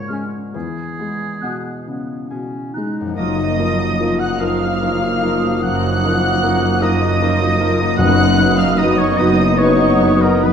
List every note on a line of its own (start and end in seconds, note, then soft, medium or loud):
0.00 0.50 C#2 medium
0.00 0.57 G#2 soft
0.00 0.57 A#2 soft
0.00 0.58 C#3 medium
0.00 0.09 G#3 soft
0.00 1.42 G#3 soft
0.00 0.58 C#4 soft
0.00 0.58 A#4 soft
0.00 0.23 C#5 medium
0.08 0.54 G#3 soft
0.08 0.26 C#4 medium
0.08 0.58 F4 soft
0.08 0.30 F6 soft
0.54 3.14 E2 soft
0.54 3.21 E3 medium
0.54 1.83 G#4 medium
0.99 1.70 G#3 soft
0.99 3.21 B3 soft
1.41 2.14 B2 soft
1.41 3.21 G#3 soft
1.41 1.58 B3 soft
1.41 1.63 F#6 medium
1.86 2.31 C#3 soft
1.86 2.27 B3 medium
2.30 3.02 B2 soft
2.30 2.75 C#4 medium
2.30 3.21 G#4 soft
2.74 3.19 G#3 soft
2.74 3.16 D#4 medium
2.74 2.95 F#6 soft
3.01 6.91 F#2 medium
3.05 6.95 F3 soft
3.09 6.99 D#4 soft
3.14 4.26 F#1 medium
3.14 4.26 F#2 medium
3.14 7.94 F3 medium
3.14 7.94 A#3 medium
3.14 3.37 F4 medium
3.14 7.04 A#4 soft
3.14 3.37 A#4 medium
3.14 4.21 D#5 medium
3.14 4.16 D#5 medium
3.14 7.76 D#6 medium
3.14 4.16 D#6 loud
3.19 3.59 F#2 medium
3.38 3.59 D#4 soft
3.38 3.59 F#4 soft
3.58 3.96 F3 soft
3.58 3.96 D#4 soft
3.58 3.79 F4 soft
3.58 3.79 A#4 soft
3.58 3.96 A#4 soft
3.78 3.99 D#4 soft
3.78 3.99 F#4 medium
3.99 4.36 F3 soft
3.99 4.36 D#4 soft
3.99 4.19 F4 soft
3.99 4.19 A#4 medium
3.99 4.37 A#4 soft
4.18 4.40 D#4 medium
4.18 4.40 F#4 medium
4.18 4.39 F#5 medium
4.18 4.41 F#5 medium
4.18 4.42 F#6 medium
4.39 5.49 F#1 medium
4.39 5.49 F#2 medium
4.39 4.78 F3 medium
4.39 4.78 D#4 soft
4.39 4.61 F4 medium
4.39 4.61 A#4 medium
4.39 4.78 A#4 medium
4.39 5.60 F5 medium
4.39 5.63 F5 medium
4.39 5.63 F6 medium
4.62 4.82 D#4 medium
4.62 4.82 F#4 soft
4.81 5.19 F3 soft
4.81 5.19 D#4 soft
4.81 5.01 F4 medium
4.81 5.01 A#4 soft
4.81 5.19 A#4 soft
5.02 5.23 D#4 medium
5.02 5.23 F#4 medium
5.22 5.59 F3 soft
5.22 5.60 D#4 soft
5.22 5.44 F4 medium
5.22 5.43 A#4 medium
5.22 5.60 A#4 medium
5.43 5.64 D#4 medium
5.43 5.64 F#4 medium
5.63 6.68 F#1 medium
5.63 6.02 F#2 medium
5.63 6.68 F#2 medium
5.63 5.83 F4 medium
5.63 5.83 A#4 medium
5.63 6.83 F#5 medium
5.63 6.80 F#5 medium
5.63 6.80 F#6 loud
5.84 6.04 D#4 medium
5.84 6.04 F#4 medium
6.03 6.39 F3 soft
6.03 6.39 D#4 soft
6.03 6.24 F4 soft
6.03 6.24 A#4 soft
6.03 6.40 A#4 medium
6.24 6.43 D#4 medium
6.24 6.44 F#4 medium
6.43 6.78 F3 medium
6.43 6.78 D#4 medium
6.43 6.61 F4 medium
6.43 6.78 A#4 medium
6.43 6.61 A#4 medium
6.63 6.82 D#4 medium
6.63 6.82 F#4 medium
6.80 7.84 F#1 medium
6.80 7.85 F#2 medium
6.80 7.17 F3 medium
6.80 7.17 D#4 medium
6.80 7.02 F4 medium
6.80 7.17 A#4 medium
6.80 7.02 A#4 medium
6.80 7.98 D#5 medium
6.80 7.97 D#5 medium
6.80 7.99 D#6 loud
7.02 7.21 D#4 medium
7.02 7.21 F#4 medium
7.21 7.56 F3 medium
7.21 7.56 D#4 medium
7.21 7.39 F4 medium
7.21 7.39 A#4 medium
7.21 7.56 A#4 medium
7.39 7.59 D#4 medium
7.39 7.59 F#4 medium
7.60 7.95 F3 medium
7.60 7.95 D#4 medium
7.60 7.79 F4 medium
7.60 7.79 A#4 medium
7.60 7.95 A#4 medium
7.80 10.53 F#2 medium
7.80 7.99 D#4 medium
7.80 7.97 F#4 medium
7.86 10.53 F#3 medium
7.90 10.53 D#4 medium
7.95 9.04 F#1 medium
7.95 9.04 F#2 loud
7.95 9.15 F#2 loud
7.95 10.53 B3 medium
7.95 8.17 F#4 medium
7.95 10.53 B4 medium
7.95 8.16 B4 medium
7.95 8.56 F#5 loud
7.95 8.58 F#5 loud
7.95 10.53 D#6 medium
7.95 8.58 F#6 loud
7.99 8.37 F#2 medium
7.99 10.53 B3 medium
7.99 10.53 D#4 medium
8.18 8.38 D#4 medium
8.18 8.38 D#5 medium
8.37 8.74 F#3 medium
8.37 8.74 D#4 medium
8.37 8.58 F#4 medium
8.37 8.58 B4 medium
8.37 8.74 B4 medium
8.57 8.78 D#4 medium
8.57 8.78 D#5 medium
8.57 8.79 F5 medium
8.57 8.78 F5 loud
8.57 8.78 F6 loud
8.77 9.15 F#3 medium
8.77 9.15 D#4 medium
8.77 8.96 F#4 medium
8.77 8.96 B4 medium
8.77 9.15 B4 medium
8.77 8.99 D#5 medium
8.77 8.98 D#5 loud
8.77 8.98 D#6 loud
8.98 9.18 D#4 medium
8.98 9.18 C#5 medium
8.98 9.19 C#5 medium
8.98 9.18 D#5 medium
8.98 9.19 C#6 medium
9.17 10.28 F#1 loud
9.17 10.29 F#2 medium
9.17 9.56 F#3 medium
9.17 9.56 D#4 medium
9.17 9.39 F#4 medium
9.17 9.39 B4 medium
9.17 9.56 B4 medium
9.17 9.60 D#5 medium
9.17 9.58 D#5 loud
9.17 9.60 D#6 loud
9.39 9.60 D#4 medium
9.39 9.60 D#5 medium
9.58 9.98 F#3 medium
9.58 9.98 D#4 medium
9.58 9.79 F#4 medium
9.58 9.79 B4 medium
9.58 9.98 B4 medium
9.58 10.21 C#5 medium
9.58 10.23 C#5 medium
9.58 10.21 C#6 loud
9.80 10.01 D#4 medium
9.80 10.01 D#5 medium
10.01 10.40 F#3 medium
10.01 10.40 D#4 medium
10.01 10.23 F#4 medium
10.01 10.22 B4 medium
10.01 10.41 B4 medium
10.21 10.44 D#4 medium
10.21 10.45 A#4 medium
10.21 10.44 A#4 medium
10.21 10.44 D#5 medium
10.21 10.44 A#5 medium
10.43 10.53 F#1 medium
10.43 10.53 F#2 medium
10.43 10.53 F#4 medium
10.43 10.53 B4 medium
10.43 10.53 B5 loud